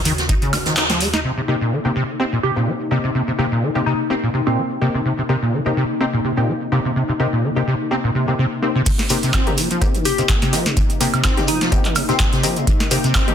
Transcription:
Already playing: D#2 C#3 F#4
0.05 D#3, closed hi-hat, open hi-hat, shekere
0.18 snare, closed hi-hat, shekere
0.29 D#4, kick, closed hi-hat, shekere
0.42 C#3, closed hi-hat, shekere
0.53 D#3, snare, closed hi-hat, open hi-hat, high woodblock, shekere
0.66 D#3, snare, closed hi-hat, shekere
0.76 D#4, snare, clap, closed hi-hat, shekere
0.89 F3, snare, closed hi-hat, shekere
1.00 G#3, closed hi-hat, open hi-hat, shekere
1.13 D#4, snare, closed hi-hat, shekere
1.24 C3 A#3 D#4
1.37 C3
1.48 C3 A#3 C4 D#4 G4
1.61 A#2
1.72 D#3
1.85 C3 A#3 C4 D#4 G4
1.96 C3
2.20 A#3 C4 D#4 G4
2.33 A#2
2.43 C3 G4
2.56 A#2 A#3 C4 D#4 G4
2.67 G3
2.91 C3 A#3 C4 D#4 G4
3.04 C3
3.15 C3
3.28 C3
3.39 C3 A#3 C4 D#4 G4
3.52 A#2
3.62 D#3
3.75 C3 A#3 C4 D#4 G4
3.86 C3 D#4
4.10 A#3 C4 D#4 G4
4.23 A#2
4.34 C3
4.47 A#2 A#3 C4 D#4 G4
4.58 G3
4.81 C3 A#3 C4 D#4 G4
4.94 C3
5.05 C3
5.18 C3
5.29 C3 A#3 C4 D#4 G4
5.42 A#2
5.53 D#3
5.66 C3 A#3 C4 D#4 G4
5.77 C3
6.00 A#3 C4 D#4 G4
6.13 A#2
6.24 C3
6.37 A#2 A#3 C4 D#4 G4
6.48 G3
6.72 C3 A#3 C4 D#4 G4
6.85 C3
6.96 C3
7.09 C3
7.20 C3 A#3 C4 D#4 G4
7.32 A#2
7.43 D#3
7.56 C3 A#3 C4 D#4 G4
7.67 C3
7.91 A#3 C4 D#4 G4
8.04 A#2
8.15 C3
8.28 C3 A#3 C4 D#4 G4
8.39 C3
8.62 A#3 C4 D#4 G4
8.75 C3
8.86 C3 A#3 D#4, kick, closed hi-hat, crash, shekere
8.99 snare, closed hi-hat, shekere
9.10 C3 A#3 C4 D#4 G4, closed hi-hat, open hi-hat, shekere
9.23 C3, closed hi-hat, shekere
9.33 C4, kick, snare, clap, closed hi-hat, high woodblock, shekere
9.47 C3 A#3 C4 D#4 G4, closed hi-hat, shekere
9.57 F3, closed hi-hat, open hi-hat, shekere
9.70 F3, closed hi-hat, shekere
9.82 A#3 C4 D#4 G4, kick, closed hi-hat, shekere
9.95 D#3, closed hi-hat, shekere
10.05 C3 G4, closed hi-hat, open hi-hat, shekere
10.18 C3 A#3 C4 D#4 G4, closed hi-hat, shekere
10.29 kick, snare, clap, closed hi-hat, shekere
10.42 C3, snare, closed hi-hat, shekere
10.53 F3 A#3 C4 D#4 G4, snare, closed hi-hat, open hi-hat, shekere
10.66 C3, snare, closed hi-hat, shekere
10.77 C3, kick, closed hi-hat, shekere
10.90 closed hi-hat, shekere
11.00 C3 A#3 C4 D#4 G4, closed hi-hat, open hi-hat, shekere
11.14 C3, closed hi-hat, high woodblock, shekere
11.24 C4, kick, snare, clap, closed hi-hat, high woodblock, shekere
11.37 C3 A#3 C4 D#4 G4, snare, closed hi-hat, shekere
11.48 F3 D#4, closed hi-hat, open hi-hat, shekere
11.61 F3, snare, closed hi-hat, shekere
11.72 A#3 C4 D#4 G4, kick, closed hi-hat, shekere
11.85 D#3, clap, closed hi-hat, shekere
11.95 C3, snare, closed hi-hat, open hi-hat, high woodblock, shekere
12.09 C3 A#3 C4 D#4 G4, snare, closed hi-hat, shekere
12.20 kick, snare, clap, closed hi-hat, shekere
12.33 C3, snare, closed hi-hat, shekere
12.43 F3 A#3 C4 D#4 G4, closed hi-hat, open hi-hat, shekere
12.56 C3, closed hi-hat, shekere
12.67 C3, kick, closed hi-hat, shekere
12.80 snare, closed hi-hat, shekere
12.91 C3 A#3 C4 D#4 G4, closed hi-hat, open hi-hat, shekere
13.03 C3, closed hi-hat, shekere
13.15 C4, kick, snare, clap, closed hi-hat, high woodblock, shekere
13.27 C3 A#3 C4 D#4 G4, closed hi-hat, shekere

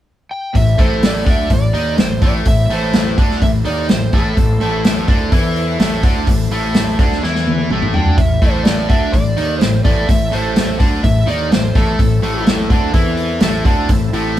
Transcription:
0.31 G5
0.54 A1 A2 E4 A4 C5 E5, kick, open hi-hat
0.78 A1 A2 A3 C5, kick, open hi-hat
1.03 D5, snare, open hi-hat
1.25 D2 D3 D4 E5, kick, open hi-hat
1.50 A1 A2 D5, kick, open hi-hat
1.74 D#2 D#3 D#4, open hi-hat
1.98 A1 A2 C5, snare, open hi-hat
2.22 A1 A2 A3 D5, kick, open hi-hat
2.46 A1 A2 E5, kick, open hi-hat
2.69 A1 A2 A3 C5, open hi-hat
2.93 snare, open hi-hat
3.18 D2 D3 D4, kick, open hi-hat
3.31 snare
3.42 A1 A2 E5, kick, open hi-hat
3.65 D#2 D#3 D#4 D5, open hi-hat
3.89 A1 A2 C5, snare, open hi-hat
4.13 A1 A2 A3 A4, kick, open hi-hat
4.36 A1 A2 E4 A4 C5, kick, open hi-hat
4.61 A1 A2 A3, open hi-hat
4.85 snare, open hi-hat
5.08 D2 D3 D4, kick, open hi-hat
5.32 E2 E3 E4, kick, open hi-hat
5.56 open hi-hat
5.79 A1 A2 A3, snare, open hi-hat
6.03 D2 D3 D4, kick, open hi-hat
6.27 A1 A2, kick, open hi-hat
6.51 A1 A2 A3, open hi-hat
6.74 snare, open hi-hat
6.98 D2 D3 D4, kick, open hi-hat
7.12 snare
7.23 E2 E3 E4, snare
7.35 snare
7.47 high tom
7.58 high tom
7.70 A1 A2 A3, mid tom
7.82 mid tom
7.94 D2 D3 D4 G5, floor tom
8.06 floor tom
8.16 A1 A2 F4 A#4 C#5 E5, kick, open hi-hat
8.32 E4 A4 C5
8.42 A1 A2 A3 C5, kick, open hi-hat
8.64 D5, snare, open hi-hat
8.88 D2 D3 D4 E5, kick, open hi-hat
9.12 A1 A2 D5, kick, open hi-hat
9.36 D#2 D#3 D#4, open hi-hat
9.59 A1 A2 C5, snare, open hi-hat
9.84 A1 A2 A3 D5, kick, open hi-hat
10.08 A1 A2 E5, kick, open hi-hat
10.32 A1 A2 A3 C5, open hi-hat
10.56 snare, open hi-hat
10.79 D2 D3 D4, kick, open hi-hat
11.04 A1 A2 E5, kick, open hi-hat
11.26 D#2 D#3 D#4 D5, open hi-hat
11.51 A1 A2 C5, snare, open hi-hat
11.75 A1 A2 A3 A4, kick, open hi-hat
11.97 A1 A2 C4 E4 A4, kick, open hi-hat
12.22 A1 A2 A3, open hi-hat
12.47 snare, open hi-hat
12.70 D2 D3 D4, kick, open hi-hat
12.93 E2 E3 E4, kick, open hi-hat
13.17 open hi-hat
13.40 A1 A2 A3, snare, open hi-hat
13.65 D2 D3 D4, kick, open hi-hat
13.89 A1 A2, kick, open hi-hat
14.12 A1 A2 A3, open hi-hat

